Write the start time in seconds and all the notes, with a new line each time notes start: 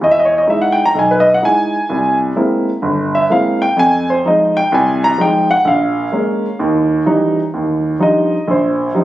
0.01 E2 D#5
0.11 E5
0.19 D#5
0.25 C#5
0.38 D#5
0.47 G#3 D#4 E4 E5
0.62 F#5
0.72 G5
0.85 A#5
0.95 B1
0.99 G#5
1.11 B4
1.20 D#5
1.34 F#5
1.42 G#3 D#4 E4 G#5
1.89 C2
2.36 G#3 A#3 C4 E4
2.82 G1
3.15 E5
3.30 G#3 A#3 C4 E4 F5
3.62 G5
3.76 F2 G#5
4.10 C5
4.25 F3 G#3 D#4 D#5
4.57 G5
4.72 C2 G#5
5.04 A#5
5.18 F3 G#3 D#4 G5
5.51 F#5
5.65 A#1 F5
6.12 G#3 A#3 C#4
6.59 D#2
7.06 E3 G3 C#4 D#4
7.54 D#2
7.99 F3 G3 D4 D#4 D#5
8.48 A#1 C5
8.95 F3 G3 D4 D#4